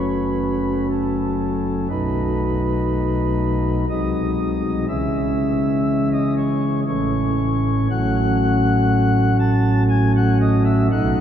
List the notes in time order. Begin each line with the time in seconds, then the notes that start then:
Already playing: F#1 F#2 F#3 A3 C#4 B4
0.91 A4
1.89 B1 B2 F#3 A3 D#4 B4
3.89 C2 C3 F#3 G#3 D#4 D#5
4.88 C#3 E3 G#3 C#4 E5
6.13 D#5
6.37 C#5
6.88 A1 A2 E3 A3 C#4 C#5
7.90 A1 A2 F#3 A3 C#4 F#5
9.39 A5
9.89 G#5
10.16 F#5
10.41 D#5
10.64 E5
10.91 B1 B2 F#3 A3 D#4 F#5